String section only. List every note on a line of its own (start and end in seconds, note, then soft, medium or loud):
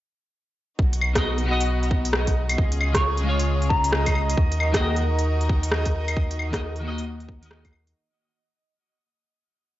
0.79 2.56 B3 medium
0.79 2.56 D#4 medium
0.79 2.56 F#4 medium
2.58 4.35 C#3 medium
2.58 4.35 C#4 medium
2.58 4.35 F4 medium
2.58 4.35 G#4 medium
4.38 7.92 D#3 medium
4.38 7.92 D#4 medium
4.38 7.92 F#4 medium
4.38 7.92 A#4 medium